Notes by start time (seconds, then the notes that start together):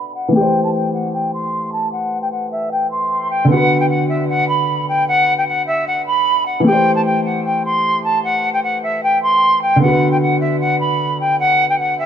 Already playing: D3 B3 F#4 B4 B5
0.15 F#5
0.28 E3 A3
0.34 G4 G5
0.40 C5
0.64 A5
0.74 G5
0.94 F#5
1.14 G5
1.34 C6
1.72 A5
1.92 F#5
2.22 G5
2.32 F#5
2.52 E5
2.72 G5
2.91 C6
3.30 G5
3.45 D3 B3
3.50 F#4 F#5
3.57 B4
3.80 G5
3.90 F#5
4.09 E5
4.29 F#5
4.49 B5
4.89 G5
5.08 F#5
5.38 G5
5.48 F#5
5.67 E5
5.87 F#5
6.07 B5
6.46 F#5
6.60 E3 A3
6.66 G4 G5
6.72 C5
6.96 A5
7.05 G5
7.25 F#5
7.45 G5
7.65 C6
8.04 A5
8.24 F#5
8.53 G5
8.63 F#5
8.83 E5
9.03 G5
9.23 C6
9.62 G5
9.76 D3 B3
9.82 F#4 F#5
9.88 B4
10.12 G5
10.21 F#5
10.41 E5
10.61 F#5
10.80 B5
11.20 G5
11.40 F#5
11.69 G5
11.79 F#5
11.99 E5